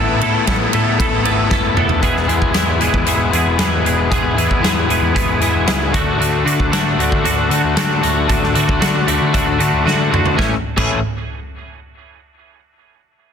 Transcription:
Already playing: picked electric bass A1, overdriven electric guitar A3 B3 E4 A4, tonewheel organ B4 E5 A5 E6
0.20 picked electric bass A2, overdriven electric guitar A3 B3 E4 A4, ride
0.46 picked electric bass A1, overdriven electric guitar A3 B3 E4 A4, kick, snare, ride
0.73 picked electric bass A2, overdriven electric guitar A3 B3 E4 A4, ride
0.98 picked electric bass A1, overdriven electric guitar A3 B3 E4 A4, kick, ride
1.24 picked electric bass G#1, overdriven electric guitar A3 B3 E4 A4, ride
1.50 picked electric bass F#1, overdriven electric guitar A3 B3 E4 A4, kick, snare
1.76 picked electric bass E1, overdriven electric guitar A3 B3 E4 A4, mid tom
1.89 floor tom
2.01 picked electric bass E1, overdriven electric guitar E3 G#3 B3 E4, clean electric guitar G#4, kick, closed hi-hat
2.17 snare
2.28 picked electric bass E2, overdriven electric guitar E3 G#3 B3 E4, clean electric guitar G#4, closed hi-hat
2.42 picked electric bass E1, kick
2.52 picked electric bass E2, overdriven electric guitar E3 G#3 B3 E4, clean electric guitar G#4, snare, closed hi-hat
2.78 picked electric bass E1, overdriven electric guitar E3 G#3 B3 E4, clean electric guitar G#4, closed hi-hat
2.94 picked electric bass E2, kick
3.04 picked electric bass E1, overdriven electric guitar E3 G#3 B3 E4, clean electric guitar G#4, closed hi-hat
3.31 picked electric bass E2, overdriven electric guitar E3 G#3 B3 E4, clean electric guitar G#4, closed hi-hat
3.46 picked electric bass E1
3.57 overdriven electric guitar E3 G#3 B3 E4, clean electric guitar G#4, snare, closed hi-hat
3.83 picked electric bass E1, overdriven electric guitar E3 G#3 B3 E4, clean electric guitar G#4, closed hi-hat
4.10 picked electric bass E1, overdriven electric guitar E3 G#3 B3 E4, clean electric guitar G#4, kick, closed hi-hat
4.35 picked electric bass E2, overdriven electric guitar E3 G#3 B3 E4, clean electric guitar G#4, closed hi-hat
4.51 picked electric bass E1, kick
4.61 picked electric bass E2, overdriven electric guitar E3 G#3 B3 E4, clean electric guitar G#4, snare, closed hi-hat
4.88 picked electric bass E1, overdriven electric guitar E3 G#3 B3 E4, clean electric guitar G#4, closed hi-hat
5.01 picked electric bass E2
5.14 picked electric bass E1, overdriven electric guitar E3 G#3 B3 E4, clean electric guitar G#4, kick, closed hi-hat
5.40 picked electric bass E2, overdriven electric guitar E3 G#3 B3 E4, clean electric guitar G#4, closed hi-hat
5.54 picked electric bass E1
5.66 picked electric bass C#2, overdriven electric guitar E3 G#3 B3 E4, clean electric guitar G#4, snare, closed hi-hat
5.91 picked electric bass D2, overdriven electric guitar D3 A3 D4 F#4, kick, closed hi-hat
6.17 picked electric bass D2, overdriven electric guitar D3 A3 D4 F#4
6.21 closed hi-hat
6.44 overdriven electric guitar D3 A3 D4 F#4, picked electric bass D3, closed hi-hat
6.60 picked electric bass D2, kick
6.71 overdriven electric guitar D3 A3 D4 F#4, picked electric bass D3, snare, closed hi-hat
6.97 picked electric bass D2, overdriven electric guitar D3 A3 D4 F#4, closed hi-hat
7.12 picked electric bass D3, kick
7.24 picked electric bass D2, overdriven electric guitar D3 A3 D4 F#4, closed hi-hat
7.49 overdriven electric guitar D3 A3 D4 F#4, picked electric bass D3, closed hi-hat
7.64 picked electric bass D2
7.75 overdriven electric guitar D3 A3 D4 F#4, picked electric bass D3, snare, closed hi-hat
8.02 picked electric bass D2, overdriven electric guitar D3 A3 D4 F#4, closed hi-hat
8.27 picked electric bass D2, overdriven electric guitar D3 A3 D4 F#4, kick, closed hi-hat
8.44 snare
8.54 overdriven electric guitar D3 A3 D4 F#4, picked electric bass D3, closed hi-hat
8.69 picked electric bass D2, kick
8.81 overdriven electric guitar D3 A3 D4 F#4, picked electric bass D3, snare, closed hi-hat
9.07 picked electric bass D2, overdriven electric guitar D3 A3 D4 F#4, closed hi-hat
9.21 picked electric bass D3
9.33 picked electric bass D2, overdriven electric guitar D3 A3 D4 F#4, kick, closed hi-hat
9.59 overdriven electric guitar D3 A3 D4 F#4, picked electric bass D3, closed hi-hat
9.73 picked electric bass D2
9.85 overdriven electric guitar D3 A3 D4 F#4, picked electric bass D3, snare
10.11 picked electric bass D2, overdriven electric guitar D3 A3 D4 F#4, mid tom
10.25 floor tom
10.37 picked electric bass A1, overdriven electric guitar A2 E3 A3 C#4 E4, clean electric guitar G#4, kick, snare
10.77 picked electric bass A1, overdriven electric guitar A2 E3 A3 C#4 E4, clean electric guitar G#4, kick, crash

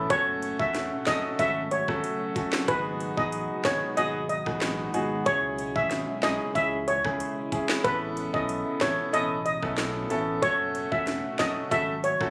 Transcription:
Already playing: ambient pad A3
0.10 sub bass F#1, ambient pad C#3 F#4, grand piano A3 C#4 F#4 A4, steel pan C#5, kick, closed hi-hat
0.42 closed hi-hat
0.59 sub bass E1, grand piano A3 C#4 F#4 A4, steel pan E5, kick
0.75 snare, closed hi-hat
1.06 sub bass F#1, grand piano A3 C#4 F#4 A4, steel pan D#5, kick, snare, clap, closed hi-hat
1.39 sub bass G#1, grand piano A3 C#4 F#4 A4, steel pan E5, kick, closed hi-hat
1.71 steel pan C#5, closed hi-hat
1.88 sub bass G#1, grand piano A3 C#4 F#4 A4, kick, cross-stick
2.04 closed hi-hat
2.36 grand piano A3 C#4 F#4 A4, kick, closed hi-hat
2.53 snare, clap
2.68 sub bass G#1, ambient pad B2 G#3, grand piano B3 D#4 F#4 G#4, steel pan B4, kick, closed hi-hat
3.00 closed hi-hat
3.17 sub bass A1, grand piano B3 D#4 F#4 G#4, steel pan D#5, kick
3.32 closed hi-hat
3.65 sub bass G#1, grand piano B3 D#4 F#4 G#4, steel pan C#5, kick, snare, clap, closed hi-hat
3.97 sub bass G#1, grand piano B3 D#4 F#4 G#4, steel pan D#5, closed hi-hat
4.29 steel pan D#5, closed hi-hat
4.46 sub bass A1, grand piano B3 D#4 F#4 G#4, kick, cross-stick
4.61 snare, clap, closed hi-hat
4.94 sub bass G#1, grand piano B3 D#4 F#4 G#4, closed hi-hat
5.26 sub bass C#2, ambient pad C#3 E4, grand piano G#3 C#4 E4 G#4, steel pan C#5, kick, closed hi-hat
5.58 closed hi-hat
5.75 sub bass G#1, grand piano G#3 C#4 E4 G#4, steel pan E5, kick
5.91 snare, closed hi-hat
6.23 sub bass B1, grand piano G#3 C#4 E4 G#4, steel pan D#5, snare, clap, closed hi-hat
6.55 sub bass C#2, grand piano G#3 C#4 E4 G#4, steel pan E5, kick, closed hi-hat
6.88 steel pan C#5, closed hi-hat
7.04 sub bass C#2, grand piano G#3 C#4 E4 G#4, kick, cross-stick
7.20 closed hi-hat
7.52 grand piano G#3 C#4 E4 G#4, kick, closed hi-hat
7.69 snare, clap
7.84 sub bass A1, ambient pad B2 A3 C#4, grand piano B3 C#4 E4 A4, steel pan B4, kick, closed hi-hat
8.17 closed hi-hat
8.33 sub bass B1, grand piano B3 C#4 E4 A4, steel pan D#5, kick
8.49 closed hi-hat
8.81 sub bass A1, grand piano B3 C#4 E4 A4, steel pan C#5, kick, snare, clap, closed hi-hat
9.13 sub bass A1, grand piano B3 C#4 E4 A4, steel pan D#5, closed hi-hat
9.46 steel pan D#5, closed hi-hat
9.63 sub bass B1, grand piano B3 C#4 E4 A4, kick, cross-stick
9.77 snare, clap, closed hi-hat
10.10 sub bass A1, grand piano B3 C#4 E4 A4, closed hi-hat
10.42 sub bass F#1, ambient pad C#3 F#4, grand piano A3 C#4 F#4 A4, steel pan C#5, kick, closed hi-hat
10.75 closed hi-hat
10.91 sub bass E1, grand piano A3 C#4 F#4 A4, steel pan E5, kick
11.07 snare, closed hi-hat
11.39 sub bass F#1, grand piano A3 C#4 F#4 A4, steel pan D#5, kick, snare, clap, closed hi-hat
11.71 sub bass G#1, grand piano A3 C#4 F#4 A4, steel pan E5, kick, closed hi-hat
12.04 steel pan C#5, closed hi-hat
12.20 sub bass G#1, grand piano A3 C#4 F#4 A4, kick, cross-stick

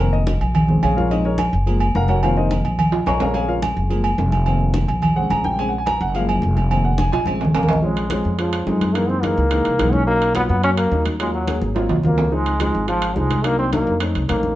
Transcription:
Already playing: upright bass F1
0.00 grand piano D#3 A#3 C4 A#4
0.13 grand piano D#5, high conga
0.27 high conga, low agogo
0.41 upright bass A#1, high conga, low agogo
0.55 high conga, low conga, low agogo
0.68 grand piano C#3 G#3 C4, high conga, low conga
0.83 upright bass A#1, grand piano G#4 C#5 F5 G#5, high conga, low agogo
0.97 grand piano F4 A#4 C#5 F5, high conga
1.10 grand piano C#3 G#3 C4 D#4 D#5, high conga, low agogo
1.25 grand piano C#4 G#4 A#4 C#5, high conga
1.38 high conga, low agogo
1.52 upright bass F#1, high conga
1.66 grand piano F3 G#3 A#3, high conga, low agogo
1.80 high conga, low agogo
1.95 upright bass F1, grand piano A#4 F5 F#5 A#5, high conga
2.08 grand piano F#4 A#4 C#5 F#5, high conga, low agogo
2.23 grand piano D#3 A#3 C4 F4 A#4 C5 F5, high conga, low agogo
2.37 grand piano D#4 A#4 C5 D#5, high conga
2.51 high conga, low agogo
2.65 upright bass A#1, high conga, low agogo
2.79 high conga, low conga, low agogo
2.92 high conga, high timbale
3.06 upright bass A#1, grand piano C#5 G#5 A#5 C#6, high conga, low timbale, low agogo
3.20 grand piano C#3 G#3 C4 A#4 C#5 F5 A#5, high conga, low timbale
3.34 grand piano G#4 C#5 F5 G#5, high conga, low agogo
3.48 grand piano F4 A#4 C#5 F5, high conga
3.62 high conga, low agogo
3.77 upright bass F#1, high conga
3.90 grand piano F3 G#3 A#3, high conga, low agogo
4.04 high conga, low agogo
4.18 upright bass F1, high conga, low timbale
4.32 high conga, low agogo
4.46 grand piano D#3 A#3 C4, high conga, low agogo
4.61 high conga
4.74 high conga, low agogo
4.88 upright bass A#1, high conga, low agogo
5.02 high conga, low conga, low agogo
5.16 grand piano C#3 G#3 C4 F#5, high conga
5.30 upright bass A#1, grand piano A#5, high conga, low agogo
5.44 grand piano G5, high conga
5.58 grand piano C#3 G#3 C4 G#5, high conga, low agogo
5.69 grand piano F#5
5.73 high conga
5.78 grand piano G#5
5.86 grand piano A#5, high conga, low agogo
6.01 upright bass F#1, grand piano F#5, high conga
6.14 grand piano F3 G#3 A#3 F5, high conga, low agogo
6.28 high conga, low agogo
6.42 upright bass F1, high conga
6.57 high conga, low agogo
6.71 grand piano D#3 A#3 C4, high conga, low agogo
6.85 grand piano F#5, high conga
6.98 grand piano G#5, high conga, low agogo
7.12 upright bass A#1, grand piano G#5, high conga, high timbale, low agogo
7.26 grand piano C#3 G#3 C4, high conga, low agogo
7.41 low conga, low timbale
7.55 upright bass A#1, trombone A#3, low timbale, low agogo
7.63 low conga
7.69 low timbale
7.73 low conga
7.82 grand piano F3 G#3 C4 C#4, trombone G#3, high conga
7.96 high conga, high timbale
8.10 grand piano F3 G#3 C4 C#4, trombone G#3, high conga, high timbale
8.24 upright bass F2, high conga
8.38 grand piano F3 G#3 C4 C#4, trombone F3, high conga, high timbale
8.53 high conga, high timbale
8.66 upright bass F#2, grand piano F3 G#3 C4 D#4, trombone G#3, high conga, low timbale
8.81 high conga, high timbale
8.94 grand piano E3 G#3 A#3 D#4, trombone A#3, high conga, high timbale
9.09 trombone C4, high conga
9.22 grand piano E3 G#3 A#3 D#4, trombone A#3, high conga, high timbale
9.37 upright bass C#2, high conga
9.51 grand piano E3 G#3 A#3 D#4, high conga, high timbale
9.65 upright bass C2, high conga, high timbale
9.78 upright bass B1, grand piano E3 G#3 A#3 D#4, high conga, high timbale
9.93 trombone C#4, high conga
10.06 grand piano F#3 A#3 C#4 D#4, trombone A#3, high conga
10.21 high conga, high timbale
10.35 grand piano F#3 A#3 C#4 F4, trombone B3, high conga, high timbale
10.49 upright bass F#2, trombone B3, high conga
10.62 grand piano F#3 A#3 C#4 F#4, trombone C#4, high conga, high timbale
10.77 trombone A#3, high timbale
10.91 upright bass D#2, grand piano F#3 A#3 C#4 D#4, high conga
11.06 high conga, high timbale
11.19 grand piano F#3 A#3 C#4 F4, trombone G#3, high conga, high timbale
11.34 trombone F#3, high conga
11.47 grand piano F#3 A#3 C#4 G#4, high conga, high timbale
11.61 upright bass G#1, high conga
11.75 grand piano F#3 A#3 C4 F4, high conga, high timbale
11.89 upright bass C2, low conga, high timbale
12.03 upright bass C#2, grand piano F#3 A#3 C4 F4, trombone A#3, low conga
12.17 low conga, low timbale
12.31 grand piano F3 G#3 C4 D#4, trombone G#3, high conga
12.46 high conga, high timbale
12.60 grand piano F3 G#3 C4 D#4, trombone G#3, high conga, high timbale
12.74 upright bass G#1, high conga
12.87 grand piano F3 G#3 C4 F4, trombone F3, high conga, high timbale
13.02 high conga, high timbale
13.15 upright bass C2, grand piano F3 G#3 C4 D#4, trombone G#3, high conga
13.30 high conga, high timbale
13.44 grand piano F#3 A#3 D4 D#4, trombone A#3, high conga, high timbale
13.59 trombone C4, high conga
13.72 grand piano F#3 A#3 D4 D#4, trombone A#3, high conga, high timbale
13.87 upright bass F2, high conga
14.00 grand piano A3 C4 C#4 D#4, high conga, high timbale
14.15 upright bass C2, high conga, high timbale
14.28 upright bass A#1, grand piano A3 C4 C#4 D#4, trombone A#3, high conga, high timbale
14.43 high conga

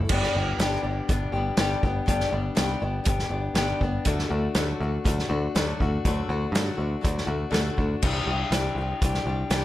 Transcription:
Already playing: steel-string acoustic guitar E3 A3 E4 A4
0.09 picked electric bass G1, steel-string acoustic guitar G2 D3 G3 B3 D4 G4, kick, crash
0.23 snare
0.35 picked electric bass G1, steel-string acoustic guitar B3 D4 G4
0.40 steel-string acoustic guitar G3
0.59 picked electric bass G1, steel-string acoustic guitar G2 D3 G3 B3 D4 G4, snare, closed hi-hat
0.83 picked electric bass G1, steel-string acoustic guitar G3 B3 D4 G4
1.09 picked electric bass G1, steel-string acoustic guitar G3 B3 D4 G4, kick, closed hi-hat
1.32 picked electric bass G1, steel-string acoustic guitar B3 D4 G4
1.37 steel-string acoustic guitar G3
1.57 picked electric bass G1, steel-string acoustic guitar G2 D3 G3 B3 D4 G4, snare, closed hi-hat
1.83 picked electric bass G1, steel-string acoustic guitar B3 D4 G4, kick
1.87 steel-string acoustic guitar G3
2.06 picked electric bass G1, steel-string acoustic guitar G2 D3 G3 B3 D4 G4, kick, closed hi-hat
2.20 snare
2.30 picked electric bass G1, steel-string acoustic guitar G3 B3 D4 G4
2.55 picked electric bass C2, steel-string acoustic guitar G2 D3 G3 B3 D4 G4, snare, closed hi-hat
2.80 picked electric bass G1, steel-string acoustic guitar G3 B3 D4 G4
3.04 picked electric bass G1, steel-string acoustic guitar G3 B3 D4, kick, closed hi-hat
3.09 steel-string acoustic guitar G4
3.19 snare
3.30 picked electric bass G1, steel-string acoustic guitar G3 B3 D4 G4
3.54 picked electric bass G1, steel-string acoustic guitar G2 D3 G3 B3 D4 G4, snare, closed hi-hat
3.81 picked electric bass G1, steel-string acoustic guitar G3 B3 D4 G4, kick
4.05 picked electric bass D2, steel-string acoustic guitar D3 F#3 A3 D4 F#4, kick, closed hi-hat
4.19 snare
4.30 picked electric bass D2, steel-string acoustic guitar D4 F#4
4.34 steel-string acoustic guitar A3
4.55 picked electric bass D2, steel-string acoustic guitar D3 F#3 A3 D4 F#4, snare, closed hi-hat
4.80 picked electric bass D2, steel-string acoustic guitar A3 D4 F#4
5.04 picked electric bass D2, steel-string acoustic guitar F#3 A3 D4 F#4, kick, closed hi-hat
5.19 snare
5.29 picked electric bass D2, steel-string acoustic guitar A3 D4 F#4
5.55 picked electric bass D2, steel-string acoustic guitar D3 F#3 A3 D4 F#4, snare, closed hi-hat
5.80 picked electric bass D2, steel-string acoustic guitar A3 D4 F#4, kick
6.05 picked electric bass D2, steel-string acoustic guitar D3 F#3 A3 D4 F#4, kick, closed hi-hat
6.29 picked electric bass D2, steel-string acoustic guitar A3 D4 F#4
6.52 picked electric bass G2, steel-string acoustic guitar D3 F#3 A3, snare, closed hi-hat
6.56 steel-string acoustic guitar D4 F#4
6.77 picked electric bass D2, steel-string acoustic guitar A3 D4 F#4
7.01 picked electric bass D2, steel-string acoustic guitar F#3 A3 D4 F#4, kick, closed hi-hat
7.18 snare
7.26 picked electric bass D2, steel-string acoustic guitar A3 D4 F#4
7.51 picked electric bass D2, steel-string acoustic guitar D3 F#3 A3 D4 F#4, snare, closed hi-hat
7.77 picked electric bass D2, steel-string acoustic guitar A3 D4 F#4, kick
8.02 picked electric bass C2, steel-string acoustic guitar C3 E3 G3 D4 G4, kick, crash
8.26 picked electric bass C2, steel-string acoustic guitar D4 G4
8.31 steel-string acoustic guitar G3
8.51 picked electric bass C2, steel-string acoustic guitar C3 E3 G3 D4 G4, snare, closed hi-hat
8.75 picked electric bass C2, steel-string acoustic guitar G4
8.81 steel-string acoustic guitar G3 D4
9.02 picked electric bass C2, steel-string acoustic guitar E3 G3 D4 G4, kick, closed hi-hat
9.14 snare
9.26 picked electric bass C2, steel-string acoustic guitar G3 D4 G4
9.50 picked electric bass C2, steel-string acoustic guitar C3 E3 G3 D4 G4, snare, closed hi-hat

